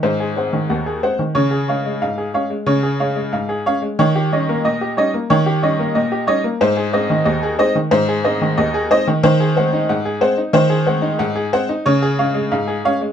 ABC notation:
X:1
M:2/4
L:1/16
Q:1/4=91
K:Ab
V:1 name="Upright piano"
[E,c] A [c_g] E, g A [cg] E, | d A [df] A, f A [df] A, | d A [df] A, f A [df] A, | d G [de] B, e G [de] B, |
d G [de] B, e G [de] B, | c A [ce] E, e A [ce] E, | c A [ce] E, e A [ce] E, | [K:Abmix] c A [cg] E g A [cg] E |
c A [cg] E g A [cg] E | d A [df] A, f A [df] A, |]
V:2 name="Upright piano" clef=bass
A,,2 [A,C]2 E,,2 [A,C]2 | D,2 [A,D]2 A,,2 [A,D]2 | D,2 [A,D]2 A,,2 [A,D]2 | E,2 [G,DE]2 B,,2 [G,DE]2 |
E,2 [G,DE]2 B,,2 [G,DE]2 | A,,2 [A,CE]2 E,,2 [A,CE]2 | A,,2 [A,CE]2 E,,2 [A,CE]2 | [K:Abmix] E,2 [A,C]2 A,,2 [A,C]2 |
E,2 [A,C]2 A,,2 [A,C]2 | D,2 [A,D]2 A,,2 [A,D]2 |]